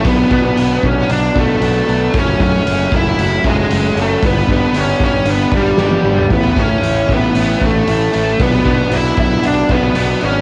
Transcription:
<<
  \new Staff \with { instrumentName = "Lead electric guitar" } { \time 4/4 \key b \dorian \tempo 4 = 115 b8. b8. cis'8 d'8 a4. | cis'8 cis'4 e'4 gis4 a8 | b8 b8 cis'8 cis'8 b8 g4. | b8 cis'4 b4 a4. |
b4 e'8 e'8 d'8 b4 cis'8 | }
  \new Staff \with { instrumentName = "Overdriven electric guitar" } { \time 4/4 \key b \dorian <b, fis b d'>8 <fis b d'>8 <b, fis b d'>8 <fis b d'>8 <b, fis b d'>8 <b, fis b d'>8 <b, fis b d'>8 <fis b d'>8 | <fis, cis fis a cis'>8 <fis a cis'>8 <fis, cis fis a cis'>8 <fis a cis'>8 <cis fis a cis'>8 <fis, cis fis a cis'>8 <cis fis a cis'>8 <fis a cis'>8 | <g, d g b d'>8 <g b d'>8 <g, d g b d'>8 <g b d'>8 <d g b d'>8 <g, d g b d'>8 <d g b d'>8 <g b d'>8 | <a, e a cis' e'>8 <a cis' e'>8 <a, e a cis' e'>8 <a cis' e'>8 <e a cis' e'>8 <a, e a cis' e'>8 <e a cis' e'>8 <a cis' e'>8 |
<b, fis b d'>8 <fis b d'>8 <b, fis b d'>8 <fis b d'>8 <b, fis b d'>8 <b, fis b d'>8 <b, fis b d'>8 <fis b d'>8 | }
  \new Staff \with { instrumentName = "Fingered electric bass" } { \clef bass \time 4/4 \key b \dorian b,,8 b,8 b,,8 b,,8 b,,8 b,,8 b,,8 b,,8 | fis,,8 fis,8 fis,,8 fis,,8 fis,,8 fis,,8 fis,,8 fis,,8 | g,,8 g,8 g,,8 g,,8 g,,8 g,,8 g,,8 g,,8 | a,,8 a,8 a,,8 a,,8 a,,8 a,,8 a,,8 a,,8 |
b,,8 b,8 b,,8 b,,8 b,,8 b,,8 b,,8 gis,,8 | }
  \new DrumStaff \with { instrumentName = "Drums" } \drummode { \time 4/4 <hho bd>8 <hho bd>8 hho8 <hho bd>8 hho8 <hho bd>8 hho8 hho8 | <hho bd>8 <hho bd>8 hho8 <hho bd>8 hho8 <hho bd>8 hho8 hho8 | <hho bd>8 <hho bd>8 hho8 <hho bd>8 hho8 <hho bd>8 sn16 tommh16 toml16 tomfh16 | <hho bd>8 <hho bd>8 hho8 <hho bd>8 hho8 <hho bd>8 hho8 hho8 |
<hho bd>8 <hho bd>8 hho8 <hho bd>8 hho8 <hho bd>8 hho8 hho8 | }
>>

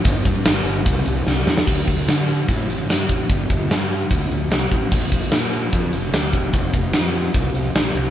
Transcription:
<<
  \new Staff \with { instrumentName = "Fingered electric bass" } { \clef bass \time 4/4 \key d \minor \tempo 4 = 148 g,,8 g,8 g,,8 g,,8 c,8 c,8 c,8 e,8 | d,8 d,8 d4 a,8 a,,8 g,8 a,,8 | g,,8 g,,8 g,4 d,8 d,8 c,8 a,,8 | bes,,8 bes,,8 bes,4 f,8 f,,8 d,8 e,,8 |
f,,8 f,,8 f,4 c,8 c,8 bes,,8 c,8 | }
  \new DrumStaff \with { instrumentName = "Drums" } \drummode { \time 4/4 <hh bd>8 <hh bd>8 <hh sn tamb>8 hh8 <hh bd>8 hh8 sn8 sn16 sn16 | <cymc bd>8 <hh bd>8 <hh sn tamb>8 hh8 <hh bd>8 hh8 <hh sn tamb>8 <hh bd>8 | <hh bd>8 <hh bd>8 <hh sn tamb>8 hh8 <hh bd>8 hh8 <hh sn tamb>8 <hh bd>8 | <cymc bd>8 <hh bd>8 <hh sn tamb>8 hh8 <hh bd>8 hh8 <hh sn tamb>8 <hh bd>8 |
<hh bd>8 <hh bd>8 <hh sn tamb>8 hh8 <hh bd>8 hh8 <hh sn tamb>8 hh8 | }
>>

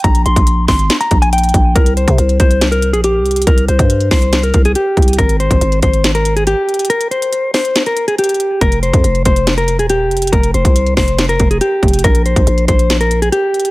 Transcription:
<<
  \new Staff \with { instrumentName = "Clean electric guitar" } { \time 4/4 \key aes \lydian \tempo 4 = 140 bes''8 c'''4 c'''8. bes''8 aes''16 g''4 | bes'8 c''4 c''8. bes'8 aes'16 g'4 | bes'8 c''4 c''8. bes'8 aes'16 g'4 | bes'8 c''4 c''8. bes'8 aes'16 g'4 |
bes'8 c''4 c''8. bes'8 aes'16 g'4 | bes'8 c''4 c''8. bes'8 aes'16 g'4 | bes'8 c''4 c''8. bes'8 aes'16 g'4 | bes'8 c''4 c''8. bes'8 aes'16 g'4 | }
  \new Staff \with { instrumentName = "808-style bass" } { \clef bass \time 4/4 \key aes \lydian bes,,8 bes,,16 bes,,8. aes,,8 r8 bes,,4 bes,,8 | c,8. c16 c,8 c,4~ c,16 bes,,8~ bes,,32 c,8~ c,32 | c,8 c,16 g,8. c,4 c,8 r8 c,8 | aes,,8. aes,,16 aes,,8 aes,,4.~ aes,,16 r8. |
r1 | f,,8. f,16 f,,8 f,,4~ f,,16 ees,,8~ ees,,32 f,,8~ f,,32 | f,,8 f,,16 c,8. f,,4 f,,8 r8 f,,8 | bes,,8. bes,,16 bes,,8 bes,,4. r4 | }
  \new DrumStaff \with { instrumentName = "Drums" } \drummode { \time 4/4 <hh bd>16 hh16 hh16 <hh bd>16 hh8 <hho bd sn>16 hh16 <hh sn>16 hh16 <hh bd>16 hh16 hh32 hh32 hh32 hh32 <hh bd>8 | <hh bd>16 hh16 hh16 <hh bd>16 hh16 hh16 <hh bd>16 hh16 <hh sn>16 hh16 hh16 hh16 hh8 hh32 hh32 hh32 hh32 | <hh bd>16 hh16 hh16 <hh bd>16 hh16 hh16 <hho bd sn>16 hh16 <hh sn>16 hh16 <hh bd>16 hh16 hh8 <hh bd>32 hh32 hh32 hh32 | <hh bd>16 hh16 hh16 <hh bd>16 hh16 hh16 <hh bd>16 hh16 <hh sn>16 hh16 hh16 hh16 hh8 hh32 hh32 hh32 hh32 |
hh16 hh16 hh16 hh16 hh8 <hho sn>16 hh16 <hh sn>16 hh16 hh16 hh16 hh32 hh32 hh32 hh32 hh8 | <hh bd>16 hh16 hh16 <hh bd>16 hh16 hh16 <hh bd>16 hh16 <hh sn>16 hh16 hh16 hh16 hh8 hh32 hh32 hh32 hh32 | <hh bd>16 hh16 hh16 <hh bd>16 hh16 hh16 <hho bd sn>16 hh16 <hh sn>16 hh16 <hh bd>16 hh16 hh8 <hh bd>32 hh32 hh32 hh32 | <hh bd>16 hh16 hh16 <hh bd>16 hh16 hh16 <hh bd>16 hh16 <hh sn>16 hh16 hh16 hh16 hh8 hh32 hh32 hh16 | }
>>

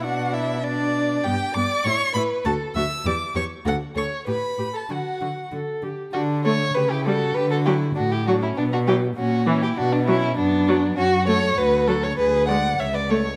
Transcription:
<<
  \new Staff \with { instrumentName = "Violin" } { \time 2/4 \key d \major \tempo 4 = 99 fis'8 e'8 d'4 | g'8 d''8 cis''8 b'8 | a'8 e''8 d''8 cis''8 | fis'8 cis''8 b'8. a'16 |
fis'4 r4 | fis'8 cis''8 b'16 g'16 a'8 | b'16 a'16 g'8 fis'16 g'16 fis'16 e'16 | d'16 fis'16 g'8 fis'8 e'16 g'16 |
fis'16 d'16 e'8 d'4 | \key b \dorian fis'8 cis''8 b'8 a'16 cis''16 | b'8 fis''8 e''16 d''16 cis''8 | }
  \new Staff \with { instrumentName = "Violin" } { \time 2/4 \key d \major fis''8 e''8 d''4 | g''8 d'''8 cis'''8 b''8 | a''8 e'''8 d'''8 cis'''8 | fis''8 cis'''8 b''8. a''16 |
fis''4 r4 | d'8 a'8 g'16 e'16 fis'8 | g'16 fis'16 e'8 d'16 e'16 d'16 cis'16 | b16 d'16 e'8 cis'8 cis'16 e'16 |
d'16 b16 cis'8 b4 | \key b \dorian cis'8 a'8 fis'8 fis'16 a'16 | gis'8 d''8 cis''16 b'16 a'8 | }
  \new Staff \with { instrumentName = "Viola" } { \time 2/4 \key d \major d'4 d'4 | b8 b8 e'8 e'8 | fis'8 fis'8 g'8 g'8 | a'8 a'8 g'8 g'8 |
fis'8 fis'8 a'8 g'8 | r8 a16 r8. g16 r16 | r8 fis16 r8. fis16 r16 | r8 fis16 r8. e16 r16 |
r8 fis16 r8. fis16 r16 | \key b \dorian r8 a16 r8. fis16 r16 | r8 gis16 r8. a16 r16 | }
  \new Staff \with { instrumentName = "Cello" } { \clef bass \time 2/4 \key d \major b,2 | g,8 g,8 a,8 a,8 | d,8 d,8 e,8 e,8 | d,8 d,8 a,8 a,8 |
d8 d8 d8 d8 | d4 cis4 | d4 a,4 | b,4 ais,4 |
b,4 fis,4 | \key b \dorian fis,4 d,4 | d,4 cis,4 | }
>>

